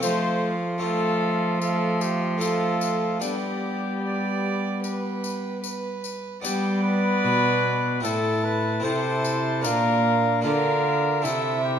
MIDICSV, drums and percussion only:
0, 0, Header, 1, 2, 480
1, 0, Start_track
1, 0, Tempo, 801068
1, 13, Time_signature, 4, 2, 24, 8
1, 7065, End_track
2, 0, Start_track
2, 0, Title_t, "Drums"
2, 15, Note_on_c, 9, 54, 69
2, 75, Note_off_c, 9, 54, 0
2, 968, Note_on_c, 9, 54, 43
2, 1028, Note_off_c, 9, 54, 0
2, 1206, Note_on_c, 9, 54, 50
2, 1266, Note_off_c, 9, 54, 0
2, 1445, Note_on_c, 9, 54, 49
2, 1505, Note_off_c, 9, 54, 0
2, 1685, Note_on_c, 9, 54, 51
2, 1745, Note_off_c, 9, 54, 0
2, 1926, Note_on_c, 9, 54, 64
2, 1986, Note_off_c, 9, 54, 0
2, 2899, Note_on_c, 9, 54, 45
2, 2959, Note_off_c, 9, 54, 0
2, 3139, Note_on_c, 9, 54, 49
2, 3199, Note_off_c, 9, 54, 0
2, 3377, Note_on_c, 9, 54, 50
2, 3437, Note_off_c, 9, 54, 0
2, 3619, Note_on_c, 9, 54, 45
2, 3678, Note_off_c, 9, 54, 0
2, 3862, Note_on_c, 9, 54, 75
2, 3922, Note_off_c, 9, 54, 0
2, 4821, Note_on_c, 9, 54, 48
2, 4881, Note_off_c, 9, 54, 0
2, 5539, Note_on_c, 9, 54, 52
2, 5599, Note_off_c, 9, 54, 0
2, 5779, Note_on_c, 9, 54, 72
2, 5839, Note_off_c, 9, 54, 0
2, 6740, Note_on_c, 9, 54, 47
2, 6800, Note_off_c, 9, 54, 0
2, 7065, End_track
0, 0, End_of_file